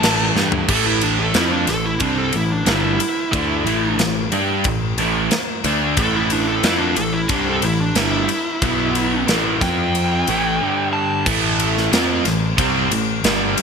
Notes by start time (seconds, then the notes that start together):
Already playing: A5
0.02 A1 A2 E3 A3, snare, crash
0.35 G2 A2 E3 A3, snare
0.52 floor tom
0.68 A1 A2 E3 A3 A4, kick, crash
0.86 E4
1.01 D4, ride
1.19 A4
1.34 F2 F3 C4 E4 F4, snare, ride
1.52 D4
1.67 A1 A2 E3 A4, snare, ride
1.86 E4
2.00 C2 C3 G3 C4 D4, kick, ride
2.18 A4
2.33 A1 A2 E3 E4, ride
2.53 D4
2.65 G1 G2 D3 G3, snare, ride
2.69 E4
3.00 muted overdriven electric guitar stroke, muted picked electric bass stroke, ride
3.32 D2 D3 A3 D4, kick, ride
3.65 A1 A2 E3 A3, ride
3.98 A1 A2 E3, snare, ride
4.32 G2 G3 D4 G4, ride
4.64 A1 A2 E3, kick, ride
4.98 A1 A2 E3 A3, ride
5.31 muted overdriven electric guitar stroke, snare, ride
5.64 D2 D3 A3 D4, ride
5.97 A1 A2 E3 A3 A4, kick, ride
6.16 E4
6.30 D4, ride
6.48 A4
6.63 F2 F3 C4 E4 F4, snare, ride
6.79 D4
6.96 A1 A2 E3 A4, ride
7.13 E4
7.29 C2 C3 G3 C4 D4, kick, ride
7.49 A4
7.62 A1 A2 E3 E4, ride
7.81 D4
7.95 G1 G2 D3 G3 E4, snare, ride
8.29 muted overdriven electric guitar stroke, ride
8.62 B1 B2 F#3 B3, kick, ride
8.95 ride
9.28 A1 A2 E3 A3, snare, ride
9.61 F2 F3 C4 F4 G5, kick, snare, ride
9.95 ride
10.27 A1 A2 E3 A3, ride
10.60 G2 D3 G3
10.93 A5
11.26 A1 A2 E3 A3, kick, crash
11.60 ride
11.78 snare
11.92 F2 F3 C4 F4, snare, ride
12.25 A1 A2 E3, snare, ride
12.57 C2 C3 G3 C4, kick, ride
12.91 A1 A2 E3, ride
13.24 G1 G2 D3 G3, snare, ride
13.57 muted picked electric bass stroke, muted overdriven electric guitar stroke, ride